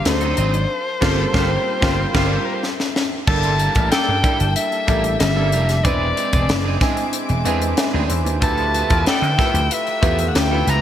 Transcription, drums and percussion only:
0.05 snare, closed hi-hat
0.21 closed hi-hat
0.37 closed hi-hat
0.54 closed hi-hat
1.02 kick, snare, crash
1.34 kick, snare
1.82 kick, snare
2.14 kick, snare, crash
2.63 snare
2.80 snare
2.96 snare
3.27 kick, crash
3.43 closed hi-hat
3.59 closed hi-hat
3.75 kick, closed hi-hat
3.92 snare, closed hi-hat
4.24 kick, closed hi-hat
4.40 closed hi-hat
4.56 closed hi-hat
4.72 closed hi-hat
4.88 kick, closed hi-hat
5.04 closed hi-hat
5.20 snare, closed hi-hat
5.52 closed hi-hat
5.69 snare, closed hi-hat
5.85 kick, closed hi-hat
6.17 closed hi-hat
6.33 kick, closed hi-hat
6.49 snare, closed hi-hat
6.81 kick, snare, closed hi-hat
6.97 closed hi-hat
7.13 closed hi-hat
7.29 closed hi-hat
7.45 closed hi-hat
7.62 closed hi-hat
7.77 snare, closed hi-hat
8.10 closed hi-hat
8.26 closed hi-hat
8.42 kick, closed hi-hat
8.58 closed hi-hat
8.74 closed hi-hat
8.90 kick, closed hi-hat
9.06 snare, closed hi-hat
9.23 closed hi-hat
9.39 kick, snare, closed hi-hat
9.55 closed hi-hat
9.71 closed hi-hat
9.87 closed hi-hat
10.03 kick, closed hi-hat
10.19 closed hi-hat
10.35 snare, closed hi-hat
10.68 closed hi-hat

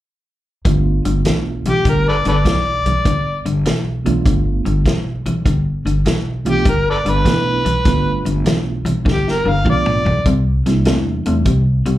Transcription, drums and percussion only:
0.65 kick, closed hi-hat
1.05 closed hi-hat
1.25 snare, closed hi-hat
1.65 closed hi-hat
1.85 kick, closed hi-hat
2.25 closed hi-hat
2.45 kick, snare, closed hi-hat
2.86 closed hi-hat
3.05 kick, closed hi-hat
3.46 closed hi-hat
3.66 snare, closed hi-hat
4.06 closed hi-hat
4.26 kick, closed hi-hat
4.66 closed hi-hat
4.86 kick, snare, closed hi-hat
5.26 closed hi-hat
5.46 kick, closed hi-hat
5.87 closed hi-hat
6.06 snare, closed hi-hat
6.46 closed hi-hat
6.65 kick, closed hi-hat
7.06 closed hi-hat
7.25 kick, snare, closed hi-hat
7.66 closed hi-hat
7.85 kick, snare, closed hi-hat
8.26 closed hi-hat
8.46 snare, closed hi-hat
8.86 closed hi-hat
9.06 kick, snare
9.28 snare
9.66 kick, mid tom
9.86 mid tom
10.06 floor tom
10.26 kick, closed hi-hat
10.66 snare, closed hi-hat
10.85 snare, closed hi-hat
11.26 closed hi-hat
11.45 kick, closed hi-hat
11.86 closed hi-hat

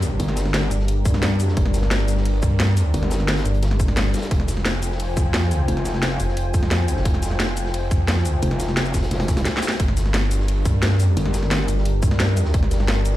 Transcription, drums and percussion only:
0.03 closed hi-hat, shaker
0.20 closed hi-hat
0.28 snare
0.36 snare, closed hi-hat, shaker
0.45 snare
0.54 snare, closed hi-hat
0.71 closed hi-hat, shaker
0.80 snare
0.88 closed hi-hat
1.05 kick, closed hi-hat, shaker
1.14 snare
1.22 snare, closed hi-hat
1.40 closed hi-hat, shaker
1.48 snare
1.57 kick, closed hi-hat
1.65 snare
1.74 snare, closed hi-hat, shaker
1.82 snare
1.91 snare, closed hi-hat
2.08 closed hi-hat, shaker
2.17 snare
2.25 closed hi-hat, open hi-hat
2.43 kick, closed hi-hat, shaker
2.60 snare, closed hi-hat
2.68 snare
2.77 closed hi-hat, shaker
2.94 closed hi-hat
3.03 snare
3.11 snare, closed hi-hat, shaker
3.20 snare
3.28 snare, closed hi-hat
3.36 snare, closed hi-hat
3.45 closed hi-hat, shaker
3.54 closed hi-hat
3.62 snare, closed hi-hat
3.71 snare
3.79 kick, closed hi-hat, shaker
3.88 snare
3.96 snare, closed hi-hat
4.06 snare
4.14 snare, closed hi-hat, shaker
4.18 snare, closed hi-hat
4.22 snare, closed hi-hat, shaker
4.31 kick, closed hi-hat
4.40 snare
4.48 snare, closed hi-hat, shaker
4.57 snare
4.65 snare, closed hi-hat
4.83 closed hi-hat, shaker
4.92 snare
5.00 closed hi-hat, open hi-hat
5.17 kick, closed hi-hat, shaker
5.33 snare, closed hi-hat
5.42 snare
5.51 closed hi-hat, shaker
5.68 closed hi-hat
5.77 snare
5.85 snare, closed hi-hat, shaker
5.94 snare
6.03 snare, closed hi-hat
6.20 closed hi-hat, shaker
6.28 snare
6.37 closed hi-hat
6.54 kick, closed hi-hat, shaker
6.63 snare
6.71 snare, closed hi-hat
6.88 closed hi-hat, shaker
6.96 snare
7.05 kick, closed hi-hat
7.14 snare
7.22 snare, closed hi-hat, shaker
7.31 snare
7.39 snare, closed hi-hat
7.57 closed hi-hat, shaker
7.66 snare
7.74 closed hi-hat, open hi-hat
7.91 kick, closed hi-hat, shaker
8.08 snare, closed hi-hat
8.17 snare
8.25 closed hi-hat, shaker
8.42 closed hi-hat
8.51 snare
8.60 snare, closed hi-hat, shaker
8.68 snare
8.77 snare, closed hi-hat
8.85 shaker
8.94 kick, snare, closed hi-hat, shaker
9.03 snare, closed hi-hat
9.11 snare, closed hi-hat
9.19 snare, closed hi-hat
9.28 kick, snare, closed hi-hat, shaker
9.37 snare, closed hi-hat, shaker
9.45 snare, closed hi-hat
9.57 snare
9.62 snare, closed hi-hat, shaker
9.68 snare
9.71 snare, closed hi-hat, shaker
9.80 kick, closed hi-hat
9.88 snare
9.97 snare, closed hi-hat, shaker
10.06 snare
10.14 snare, closed hi-hat
10.31 closed hi-hat, shaker
10.40 snare
10.48 closed hi-hat, open hi-hat
10.65 kick, closed hi-hat, shaker
10.83 snare, closed hi-hat
10.92 snare
11.00 closed hi-hat, shaker
11.17 closed hi-hat
11.25 snare
11.34 snare, closed hi-hat, shaker
11.43 snare
11.51 snare, closed hi-hat
11.68 closed hi-hat, shaker
11.78 snare
11.85 closed hi-hat
12.02 kick, closed hi-hat, shaker
12.11 snare
12.20 snare, closed hi-hat
12.36 closed hi-hat, shaker
12.45 snare
12.54 kick, closed hi-hat
12.63 snare
12.71 snare, closed hi-hat, shaker
12.79 snare
12.88 snare, closed hi-hat
13.05 closed hi-hat, shaker
13.13 snare

